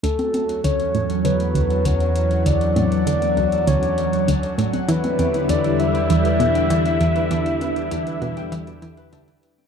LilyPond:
<<
  \new Staff \with { instrumentName = "Soft synth lead" } { \time 4/4 \key d \major \tempo 4 = 99 a'4 cis''4 b'4 cis''4 | d''2 cis''4. r8 | b'4 d''8 e''2~ e''8~ | e''2. r4 | }
  \new Staff \with { instrumentName = "Harp" } { \time 4/4 \key d \major cis'16 d'16 a'16 fis'16 cis'16 a'16 a'16 fis''16 d'16 d''16 fis'16 a'16 cis'16 d'16 a'16 fis'16 | cis'16 a'16 a'16 fis''16 d'16 d''16 fis'16 a'16 cis'16 d'16 a'16 fis'16 cis'16 a'16 a'16 fis''16 | e'16 e''16 g'16 b'16 d'16 e'16 b'16 g'16 d'16 b'16 b'16 g''16 e'16 e''16 g'16 b'16 | d'16 e'16 b'16 g'16 d'16 b'16 b'16 g''16 e'16 e''16 g'16 b'16 d'16 e'16 b'16 g'16 | }
  \new Staff \with { instrumentName = "String machine" } { \clef bass \time 4/4 \key d \major fis1~ | fis1 | <d g e'>1~ | <d g e'>1 | }
  \new Staff \with { instrumentName = "Synth arpeggio sound" } { \clef bass \time 4/4 \key d \major d,8 r8 d,16 r16 a,8 d8 d,16 r16 d,8 r8 | d,16 r16 a,8 d8 d,16 r16 d,8 r8 d,16 r16 a,8 | e8 e,16 r16 e,8 r8 e,16 r16 b,8 e8 e,16 r16 | e,8 r8 e,16 r16 b,8 e8 e16 r16 d16 r8. | }
  \new Staff \with { instrumentName = "Synth drone" } { \clef bass \time 4/4 \key d \major e,1~ | e,1 | e,1~ | e,1 | }
  \new DrumStaff \with { instrumentName = "Drums" } \drummode { \time 4/4 hh16 <cgho hh>16 <cgho hh>16 hh16 hh16 hh16 hh16 hh16 hh16 hh16 hh16 hh16 hh16 hh16 hh16 hh16 | hh16 hh16 <cgho hh>16 hh16 hh16 hh16 hh16 hh16 hh16 hh16 hh16 hh16 hh16 hh16 hh16 <cgho hh>16 | hh16 <cgho hh>16 <cgho hh>16 hh16 hh16 hh16 hh16 hh16 hh16 hh16 hh16 hh16 hh16 hh16 hh16 hh16 | hh16 hh16 <cgho hh>16 hh16 hh16 hh16 hh16 hh16 hh16 hh16 hh16 hh16 hh16 hh16 hh16 <cgho hh>16 | }
>>